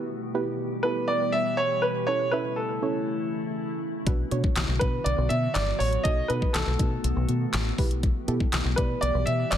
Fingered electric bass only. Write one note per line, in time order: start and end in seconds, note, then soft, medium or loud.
4.07 4.23 B1 loud
4.31 4.47 B2 loud
4.56 4.64 B1 loud
4.69 4.77 B1 loud
4.81 4.97 B2 loud
5.06 5.14 B1 loud
5.18 5.26 B1 loud
5.30 5.47 B2 loud
5.55 5.71 G1 medium
5.80 5.96 A1 loud
6.05 6.21 B1 loud
6.30 6.46 B2 loud
6.54 6.62 B1 loud
6.67 6.75 B1 loud
6.80 6.96 B2 loud
7.04 7.12 B1 loud
7.16 7.24 B1 loud
7.29 7.45 B2 loud
7.54 7.70 A1 loud
7.78 8.11 B1 loud
8.28 8.44 B2 loud
8.53 8.61 B1 loud
8.65 8.73 B1 loud
8.78 8.94 B2 loud
9.02 9.10 B1 loud
9.15 9.23 B1 loud
9.27 9.43 B2 loud
9.52 9.58 F#1 loud